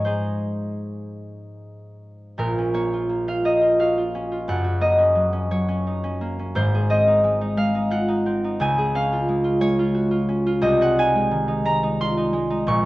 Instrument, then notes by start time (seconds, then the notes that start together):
harp
Already playing: G#2 G#3
0.05 D#4 G#4 C5
2.38 A#1 A#2 A#4
2.58 C#4
2.74 A#3 C#5
2.93 F4
3.09 A#3
3.28 F4 F5
3.44 A#3 D#5
3.61 F4
3.79 F#4 F5
3.98 F4
4.15 C#4
4.32 F4
4.48 F#1 F#2 F#5
4.64 F#4
4.81 A#3 D#5
4.98 C#4
5.15 F#3
5.33 C#4
5.51 F#3 C#5
5.68 C#4
5.87 D#4
6.04 C#4
6.21 A#3
6.39 C#4
6.55 G#1 G#2 C5
6.74 G#4
6.90 C4 D#5
7.08 D#4
7.24 G#3
7.41 D#4
7.57 G#3 F5
7.75 D#4
7.91 F4 F#5
8.09 D#4
8.26 C4
8.44 D#4
8.60 C#2 C#3 G#5
8.78 G#4
8.95 C#4 F5
9.12 F4
9.29 G#3
9.44 F4
9.61 G#3 C#5
9.79 F4
9.94 F#4
10.11 F4
10.29 C#4
10.47 F4
10.62 C2 C3 D#5
10.81 G#4 F#5
10.99 D#4 G#5
11.15 G#3
11.31 D#3
11.48 D#4
11.65 G#3 A#5
11.83 D#4
12.01 F4 C6
12.17 D#4
12.33 G#3
12.50 D#4
12.67 A#1 A#2 C#6